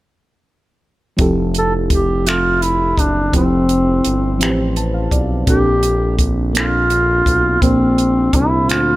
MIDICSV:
0, 0, Header, 1, 5, 480
1, 0, Start_track
1, 0, Key_signature, -1, "major"
1, 0, Tempo, 714286
1, 800, Time_signature, 6, 3, 24, 8
1, 6023, End_track
2, 0, Start_track
2, 0, Title_t, "Duduk"
2, 0, Program_c, 0, 69
2, 1064, Note_on_c, 0, 69, 82
2, 1167, Note_off_c, 0, 69, 0
2, 1303, Note_on_c, 0, 67, 83
2, 1537, Note_on_c, 0, 65, 81
2, 1547, Note_off_c, 0, 67, 0
2, 1769, Note_on_c, 0, 64, 78
2, 1779, Note_off_c, 0, 65, 0
2, 2011, Note_on_c, 0, 62, 70
2, 2021, Note_off_c, 0, 64, 0
2, 2246, Note_off_c, 0, 62, 0
2, 2256, Note_on_c, 0, 60, 77
2, 3181, Note_off_c, 0, 60, 0
2, 3687, Note_on_c, 0, 67, 99
2, 4137, Note_off_c, 0, 67, 0
2, 4405, Note_on_c, 0, 65, 92
2, 5120, Note_on_c, 0, 60, 82
2, 5130, Note_off_c, 0, 65, 0
2, 5613, Note_on_c, 0, 64, 78
2, 5623, Note_off_c, 0, 60, 0
2, 5854, Note_on_c, 0, 65, 87
2, 5864, Note_off_c, 0, 64, 0
2, 6023, Note_off_c, 0, 65, 0
2, 6023, End_track
3, 0, Start_track
3, 0, Title_t, "FM electric piano"
3, 0, Program_c, 1, 5
3, 784, Note_on_c, 1, 53, 81
3, 791, Note_on_c, 1, 60, 73
3, 799, Note_on_c, 1, 64, 72
3, 807, Note_on_c, 1, 67, 73
3, 815, Note_on_c, 1, 69, 85
3, 931, Control_c, 1, 64, 127
3, 1401, Note_off_c, 1, 53, 0
3, 1405, Note_off_c, 1, 60, 0
3, 1409, Note_off_c, 1, 64, 0
3, 1413, Note_off_c, 1, 67, 0
3, 1417, Note_off_c, 1, 69, 0
3, 1514, Note_on_c, 1, 53, 52
3, 1518, Note_on_c, 1, 60, 46
3, 1529, Note_on_c, 1, 76, 48
3, 1535, Note_on_c, 1, 67, 48
3, 1542, Note_on_c, 1, 69, 60
3, 2126, Note_off_c, 1, 53, 0
3, 2128, Note_off_c, 1, 60, 0
3, 2134, Note_off_c, 1, 76, 0
3, 2137, Note_off_c, 1, 67, 0
3, 2140, Note_off_c, 1, 69, 0
3, 2229, Note_on_c, 1, 53, 66
3, 2235, Note_on_c, 1, 60, 59
3, 2244, Note_on_c, 1, 64, 62
3, 2253, Note_on_c, 1, 67, 64
3, 2261, Note_on_c, 1, 72, 69
3, 2844, Note_off_c, 1, 53, 0
3, 2847, Note_off_c, 1, 60, 0
3, 2851, Note_off_c, 1, 64, 0
3, 2856, Note_off_c, 1, 67, 0
3, 2860, Note_off_c, 1, 72, 0
3, 2948, Note_on_c, 1, 53, 69
3, 2954, Note_on_c, 1, 60, 62
3, 2962, Note_on_c, 1, 64, 60
3, 2973, Note_on_c, 1, 67, 61
3, 2979, Note_on_c, 1, 71, 59
3, 3013, Note_off_c, 1, 71, 0
3, 3024, Note_on_c, 1, 72, 77
3, 3205, Note_on_c, 1, 81, 61
3, 3314, Note_off_c, 1, 81, 0
3, 3320, Note_on_c, 1, 77, 54
3, 3432, Note_off_c, 1, 77, 0
3, 3440, Note_on_c, 1, 74, 58
3, 3563, Note_off_c, 1, 53, 0
3, 3566, Note_off_c, 1, 60, 0
3, 3570, Note_off_c, 1, 64, 0
3, 3576, Note_off_c, 1, 67, 0
3, 3601, Note_off_c, 1, 72, 0
3, 3662, Note_on_c, 1, 46, 66
3, 3663, Note_off_c, 1, 74, 0
3, 3670, Note_on_c, 1, 58, 65
3, 3679, Note_on_c, 1, 60, 65
3, 3685, Note_on_c, 1, 62, 60
3, 3688, Control_c, 1, 64, 0
3, 3694, Note_on_c, 1, 69, 78
3, 3806, Control_c, 1, 64, 127
3, 4280, Note_off_c, 1, 46, 0
3, 4285, Note_off_c, 1, 58, 0
3, 4289, Note_off_c, 1, 60, 0
3, 4292, Note_off_c, 1, 62, 0
3, 4296, Note_off_c, 1, 69, 0
3, 4385, Note_on_c, 1, 46, 56
3, 4390, Note_on_c, 1, 58, 53
3, 4399, Note_on_c, 1, 60, 50
3, 4408, Note_on_c, 1, 62, 52
3, 4415, Note_on_c, 1, 69, 59
3, 5002, Note_off_c, 1, 46, 0
3, 5004, Note_off_c, 1, 58, 0
3, 5009, Note_off_c, 1, 60, 0
3, 5013, Note_off_c, 1, 62, 0
3, 5017, Note_off_c, 1, 69, 0
3, 5108, Note_on_c, 1, 46, 68
3, 5117, Note_on_c, 1, 58, 66
3, 5123, Note_on_c, 1, 60, 63
3, 5133, Note_on_c, 1, 62, 63
3, 5139, Note_on_c, 1, 72, 78
3, 5723, Note_off_c, 1, 46, 0
3, 5728, Note_off_c, 1, 58, 0
3, 5731, Note_off_c, 1, 60, 0
3, 5736, Note_off_c, 1, 62, 0
3, 5739, Note_off_c, 1, 72, 0
3, 5820, Note_on_c, 1, 46, 52
3, 5833, Note_on_c, 1, 58, 48
3, 5840, Note_on_c, 1, 60, 48
3, 5848, Note_on_c, 1, 62, 50
3, 5857, Note_on_c, 1, 72, 59
3, 6023, Note_off_c, 1, 46, 0
3, 6023, Note_off_c, 1, 58, 0
3, 6023, Note_off_c, 1, 60, 0
3, 6023, Note_off_c, 1, 62, 0
3, 6023, Note_off_c, 1, 72, 0
3, 6023, End_track
4, 0, Start_track
4, 0, Title_t, "Analog synth bass"
4, 0, Program_c, 2, 38
4, 802, Note_on_c, 2, 29, 97
4, 1974, Note_off_c, 2, 29, 0
4, 2004, Note_on_c, 2, 30, 80
4, 2218, Note_off_c, 2, 30, 0
4, 2243, Note_on_c, 2, 29, 102
4, 2695, Note_off_c, 2, 29, 0
4, 2729, Note_on_c, 2, 31, 83
4, 2966, Note_on_c, 2, 33, 96
4, 2976, Note_off_c, 2, 31, 0
4, 3416, Note_off_c, 2, 33, 0
4, 3441, Note_on_c, 2, 35, 77
4, 3656, Note_off_c, 2, 35, 0
4, 3683, Note_on_c, 2, 34, 108
4, 4855, Note_off_c, 2, 34, 0
4, 4884, Note_on_c, 2, 35, 87
4, 5098, Note_off_c, 2, 35, 0
4, 5124, Note_on_c, 2, 34, 93
4, 5575, Note_off_c, 2, 34, 0
4, 5604, Note_on_c, 2, 36, 84
4, 5850, Note_on_c, 2, 38, 89
4, 5860, Note_off_c, 2, 36, 0
4, 6023, Note_off_c, 2, 38, 0
4, 6023, End_track
5, 0, Start_track
5, 0, Title_t, "Drums"
5, 796, Note_on_c, 9, 42, 55
5, 799, Note_on_c, 9, 36, 88
5, 863, Note_off_c, 9, 42, 0
5, 866, Note_off_c, 9, 36, 0
5, 1038, Note_on_c, 9, 42, 44
5, 1105, Note_off_c, 9, 42, 0
5, 1278, Note_on_c, 9, 36, 70
5, 1278, Note_on_c, 9, 42, 57
5, 1345, Note_off_c, 9, 36, 0
5, 1345, Note_off_c, 9, 42, 0
5, 1522, Note_on_c, 9, 42, 55
5, 1536, Note_on_c, 9, 26, 94
5, 1590, Note_off_c, 9, 42, 0
5, 1603, Note_off_c, 9, 26, 0
5, 1762, Note_on_c, 9, 42, 42
5, 1830, Note_off_c, 9, 42, 0
5, 1999, Note_on_c, 9, 36, 70
5, 2007, Note_on_c, 9, 42, 59
5, 2067, Note_off_c, 9, 36, 0
5, 2074, Note_off_c, 9, 42, 0
5, 2241, Note_on_c, 9, 36, 83
5, 2242, Note_on_c, 9, 42, 57
5, 2308, Note_off_c, 9, 36, 0
5, 2309, Note_off_c, 9, 42, 0
5, 2480, Note_on_c, 9, 42, 45
5, 2547, Note_off_c, 9, 42, 0
5, 2718, Note_on_c, 9, 42, 58
5, 2785, Note_off_c, 9, 42, 0
5, 2962, Note_on_c, 9, 42, 55
5, 2976, Note_on_c, 9, 26, 93
5, 3029, Note_off_c, 9, 42, 0
5, 3043, Note_off_c, 9, 26, 0
5, 3201, Note_on_c, 9, 42, 42
5, 3268, Note_off_c, 9, 42, 0
5, 3437, Note_on_c, 9, 36, 66
5, 3441, Note_on_c, 9, 42, 57
5, 3504, Note_off_c, 9, 36, 0
5, 3508, Note_off_c, 9, 42, 0
5, 3677, Note_on_c, 9, 42, 58
5, 3678, Note_on_c, 9, 36, 90
5, 3744, Note_off_c, 9, 42, 0
5, 3745, Note_off_c, 9, 36, 0
5, 3916, Note_on_c, 9, 42, 46
5, 3983, Note_off_c, 9, 42, 0
5, 4157, Note_on_c, 9, 36, 70
5, 4158, Note_on_c, 9, 42, 56
5, 4224, Note_off_c, 9, 36, 0
5, 4225, Note_off_c, 9, 42, 0
5, 4401, Note_on_c, 9, 42, 56
5, 4415, Note_on_c, 9, 26, 94
5, 4468, Note_off_c, 9, 42, 0
5, 4482, Note_off_c, 9, 26, 0
5, 4638, Note_on_c, 9, 42, 42
5, 4705, Note_off_c, 9, 42, 0
5, 4879, Note_on_c, 9, 36, 66
5, 4885, Note_on_c, 9, 42, 57
5, 4947, Note_off_c, 9, 36, 0
5, 4952, Note_off_c, 9, 42, 0
5, 5121, Note_on_c, 9, 36, 89
5, 5123, Note_on_c, 9, 42, 58
5, 5188, Note_off_c, 9, 36, 0
5, 5190, Note_off_c, 9, 42, 0
5, 5364, Note_on_c, 9, 42, 44
5, 5431, Note_off_c, 9, 42, 0
5, 5599, Note_on_c, 9, 36, 73
5, 5599, Note_on_c, 9, 42, 59
5, 5666, Note_off_c, 9, 42, 0
5, 5667, Note_off_c, 9, 36, 0
5, 5842, Note_on_c, 9, 42, 54
5, 5856, Note_on_c, 9, 26, 94
5, 5910, Note_off_c, 9, 42, 0
5, 5923, Note_off_c, 9, 26, 0
5, 6023, End_track
0, 0, End_of_file